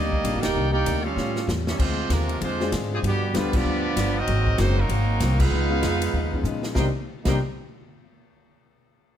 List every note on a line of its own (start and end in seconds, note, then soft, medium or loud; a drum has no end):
0.00 0.23 D2 medium
0.00 0.13 C3 medium
0.00 0.13 D#3 medium
0.00 0.42 G3 medium
0.00 0.14 A#3 medium
0.00 0.38 A#3 loud
0.00 0.42 A#3 medium
0.00 0.14 D4 medium
0.00 0.38 D#4 medium
0.00 0.42 G4 medium
0.00 0.40 D5 medium
0.00 0.43 D#5 loud
0.12 kick medium
0.23 0.35 A#1 loud
0.23 0.44 C3 medium
0.23 0.44 D#3 medium
0.23 0.45 A#3 medium
0.23 0.45 D4 medium
0.23 kick soft
0.23 hi-hat pedal medium
0.23 ride medium
0.34 0.44 G1 medium
0.39 0.69 A#3 medium
0.39 0.69 D#4 loud
0.39 0.70 D#4 medium
0.39 0.69 G4 loud
0.39 0.71 A#4 loud
0.39 0.71 D5 loud
0.39 0.70 G5 loud
0.43 0.54 D#1 medium
0.43 snare medium
0.43 ride medium
0.55 0.85 C2 medium
0.55 0.75 C3 medium
0.55 0.76 D#3 medium
0.55 0.76 A#3 medium
0.55 0.76 D4 medium
0.70 1.01 A#3 loud
0.70 1.01 D#4 loud
0.70 1.01 D#4 medium
0.70 1.01 G4 loud
0.70 1.02 A#4 medium
0.70 1.02 D5 medium
0.70 1.02 G5 loud
0.85 1.16 D2 loud
0.85 1.06 C3 medium
0.85 1.06 D#3 medium
0.85 1.07 A#3 medium
0.85 1.07 D4 medium
0.85 kick soft
0.85 hi-hat pedal medium
0.85 ride medium
1.03 1.47 G3 medium
1.03 1.47 C#4 medium
1.03 1.48 C#4 medium
1.03 1.47 F4 medium
1.03 1.48 G4 medium
1.03 1.48 A4 medium
1.03 1.48 F5 loud
1.16 1.47 A2 medium
1.16 1.37 A2 medium
1.16 1.38 G3 medium
1.16 1.38 C#4 medium
1.16 1.38 F4 medium
1.16 snare medium
1.36 snare medium
1.47 1.78 E2 loud
1.47 1.68 A2 medium
1.47 1.68 G3 medium
1.47 1.69 C#4 medium
1.47 1.69 F4 medium
1.47 snare medium
1.47 hi-hat pedal medium
1.67 1.79 G3 medium
1.67 1.78 C#4 medium
1.67 1.79 C#4 medium
1.67 1.79 E4 medium
1.67 1.79 G4 medium
1.67 1.78 A4 medium
1.67 1.78 E5 medium
1.67 snare medium
1.79 2.09 D2 medium
1.79 1.99 D3 soft
1.79 2.10 F3 medium
1.79 2.10 G#3 medium
1.79 2.11 G#3 medium
1.79 2.00 G#3 soft
1.79 2.11 C4 medium
1.79 2.00 C4 medium
1.79 2.10 D4 medium
1.79 2.10 F4 medium
1.79 2.01 F4 medium
1.79 2.10 C5 loud
1.79 kick medium
1.79 crash loud
2.10 2.40 D#2 loud
2.10 2.42 C3 medium
2.10 2.30 D3 medium
2.10 2.41 F3 medium
2.10 2.31 G#3 medium
2.10 2.42 G#3 medium
2.10 2.42 A#3 medium
2.10 2.31 C4 medium
2.10 2.42 D4 medium
2.10 2.31 F4 medium
2.10 2.42 F4 medium
2.10 2.42 A#4 loud
2.10 kick soft
2.10 snare medium
2.10 hi-hat pedal medium
2.10 ride medium
2.29 ride medium
2.41 2.71 F2 loud
2.41 2.61 D3 medium
2.41 2.71 F3 medium
2.41 2.62 G#3 medium
2.41 2.71 G#3 medium
2.41 2.71 C4 medium
2.41 2.62 C4 medium
2.41 2.71 D4 medium
2.41 2.71 F4 medium
2.41 2.63 F4 medium
2.41 2.71 C5 loud
2.41 kick soft
2.41 ride medium
2.60 3.01 G#3 medium
2.60 3.02 C4 medium
2.60 3.02 D4 medium
2.60 3.02 F4 medium
2.60 3.02 G#4 medium
2.60 snare medium
2.72 3.02 G#2 loud
2.72 2.92 D3 medium
2.72 2.93 G#3 medium
2.72 2.93 C4 medium
2.72 2.93 F4 medium
2.72 kick soft
2.72 snare medium
2.72 hi-hat pedal medium
2.72 ride medium
2.93 2.98 C3 medium
2.93 2.98 F3 medium
2.93 2.98 G#3 medium
2.93 2.99 C4 medium
2.93 2.99 D4 medium
2.93 2.99 G#4 medium
3.03 3.23 G2 soft
3.03 3.33 G2 medium
3.03 3.33 B2 medium
3.03 3.32 D3 medium
3.03 3.24 F3 medium
3.03 3.32 G3 medium
3.03 3.24 B3 medium
3.03 3.33 B3 medium
3.03 3.25 D4 medium
3.03 3.34 D4 medium
3.03 3.33 G4 loud
3.03 kick soft
3.03 ride medium
3.34 3.43 F2 loud
3.34 3.55 G2 medium
3.34 3.54 D3 medium
3.34 3.55 F3 medium
3.34 3.53 F3 medium
3.34 3.81 G3 medium
3.34 3.55 G3 medium
3.34 3.81 B3 medium
3.34 3.55 B3 medium
3.34 3.54 B3 medium
3.34 3.81 D4 medium
3.34 3.56 D4 medium
3.34 3.55 D4 medium
3.34 3.81 F4 medium
3.34 3.54 F4 medium
3.34 3.81 G4 medium
3.34 3.55 B4 loud
3.34 kick soft
3.34 snare medium
3.34 hi-hat pedal medium
3.34 ride medium
3.43 3.54 D2 medium
3.53 3.64 B1 medium
3.53 4.16 F3 loud
3.53 4.16 B3 loud
3.53 4.17 B3 loud
3.53 4.16 D4 loud
3.53 4.17 F4 medium
3.53 4.17 G4 loud
3.53 4.16 D5 loud
3.53 kick loud
3.53 crash medium
3.64 3.95 D2 medium
3.64 3.85 G2 medium
3.64 3.86 F3 soft
3.64 3.86 B3 medium
3.64 3.86 D4 medium
3.96 4.26 G1 loud
3.96 4.17 G2 medium
3.96 4.17 F3 medium
3.96 4.17 B3 medium
3.96 4.18 D4 medium
3.96 kick soft
3.96 snare medium
3.96 hi-hat pedal medium
3.96 ride medium
4.18 4.60 F#3 loud
4.18 4.60 C4 medium
4.18 4.60 C4 loud
4.18 4.60 D#4 loud
4.18 4.58 F#4 medium
4.18 4.60 A#4 loud
4.18 4.60 D#5 loud
4.28 4.58 G#1 medium
4.28 4.48 G#2 soft
4.28 4.48 F#3 medium
4.28 4.49 A#3 medium
4.28 4.49 C4 medium
4.28 kick soft
4.28 ride medium
4.47 kick medium
4.58 4.89 F#1 loud
4.58 4.79 G#2 medium
4.58 4.77 D#3 medium
4.58 4.79 F#3 medium
4.58 4.77 F#3 medium
4.58 4.76 G#3 medium
4.58 4.78 A#3 medium
4.58 4.76 A#3 medium
4.58 4.79 A#3 medium
4.58 4.76 C4 medium
4.58 4.80 C4 medium
4.58 4.79 C4 medium
4.58 4.78 D#4 medium
4.58 4.76 D#4 soft
4.58 4.78 F#4 medium
4.58 4.76 F#4 medium
4.58 4.78 C5 loud
4.58 kick soft
4.58 snare medium
4.58 hi-hat pedal medium
4.58 ride medium
4.78 5.40 D#3 loud
4.78 5.40 F#3 medium
4.78 5.40 F#3 loud
4.78 5.40 A#3 medium
4.78 5.41 C4 loud
4.78 5.39 D#4 medium
4.78 5.41 A#4 loud
4.89 5.19 G#1 medium
4.89 5.09 G#2 soft
4.89 5.10 F#3 medium
4.89 5.10 A#3 medium
4.89 5.11 C4 medium
4.89 kick soft
4.89 ride medium
5.20 5.50 C2 loud
5.20 5.41 G#2 medium
5.20 5.41 F#3 medium
5.20 5.41 A#3 medium
5.20 5.42 C4 medium
5.20 kick soft
5.20 snare medium
5.20 hi-hat pedal medium
5.20 ride medium
5.39 6.45 G#3 loud
5.39 6.45 B3 loud
5.39 6.45 D#4 loud
5.39 6.45 F4 medium
5.39 6.45 G#4 medium
5.39 6.45 B4 loud
5.39 6.45 F5 loud
5.39 kick loud
5.39 crash medium
5.51 5.81 C#2 medium
5.51 5.72 C#3 soft
5.51 5.72 F3 soft
5.51 5.73 B3 soft
5.51 5.73 D#4 medium
5.70 5.81 G#3 medium
5.70 5.81 B3 medium
5.70 5.81 C#4 medium
5.70 5.81 D#4 medium
5.70 5.82 F4 medium
5.82 6.13 F2 loud
5.82 6.03 C#3 medium
5.82 6.04 F3 medium
5.82 6.04 B3 medium
5.82 6.04 D#4 medium
5.82 kick soft
5.82 snare medium
5.82 hi-hat pedal medium
5.82 ride medium
6.02 ride medium
6.13 6.43 D#2 medium
6.13 6.34 C#3 medium
6.13 6.35 F3 medium
6.13 6.35 B3 medium
6.13 6.35 D#4 medium
6.13 kick soft
6.33 6.74 G#3 medium
6.33 6.74 B3 medium
6.33 6.74 C#4 medium
6.33 6.74 D#4 medium
6.33 6.74 F4 medium
6.33 kick medium
6.43 6.74 A#2 loud
6.43 6.65 C#3 medium
6.43 6.66 F3 medium
6.43 6.66 B3 medium
6.43 6.66 D#4 medium
6.43 hi-hat pedal medium
6.63 snare medium
6.74 6.86 C2 loud
6.74 6.86 C3 medium
6.74 6.87 C3 medium
6.74 6.88 D#3 medium
6.74 6.86 G3 medium
6.74 6.86 A#3 medium
6.74 6.88 A#3 medium
6.74 6.88 C4 medium
6.74 6.88 D4 medium
6.74 6.86 D#4 loud
6.74 6.88 D#4 medium
6.74 6.88 G4 medium
6.74 6.86 A#4 medium
6.74 6.86 D#5 medium
6.74 6.86 G5 medium
6.74 6.86 C6 medium
6.74 kick loud
6.74 snare medium
7.24 7.37 C2 loud
7.24 7.36 C3 medium
7.24 7.36 D#3 medium
7.24 7.36 G3 medium
7.24 7.36 A#3 loud
7.24 7.37 A#3 medium
7.24 7.36 A#3 medium
7.24 7.37 C4 medium
7.24 7.37 D4 medium
7.24 7.36 D#4 medium
7.24 7.38 D#4 medium
7.24 7.38 G4 medium
7.24 7.37 A#4 medium
7.24 7.37 D#5 medium
7.24 7.37 G5 medium
7.24 7.37 C6 medium
7.24 kick loud
7.24 snare medium
7.24 crash medium
7.29 7.37 D4 medium